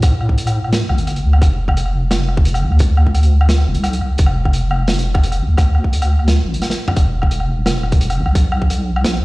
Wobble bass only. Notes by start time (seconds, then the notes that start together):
Already playing: A2
0.90 C2
0.98 G1
1.24 D2
1.42 F1
2.63 A1
2.72 D2
3.67 F1
3.76 C2
4.02 C2
4.19 F1
5.40 A1
5.49 D2
6.44 A1
6.97 E1
8.18 G1
8.27 B1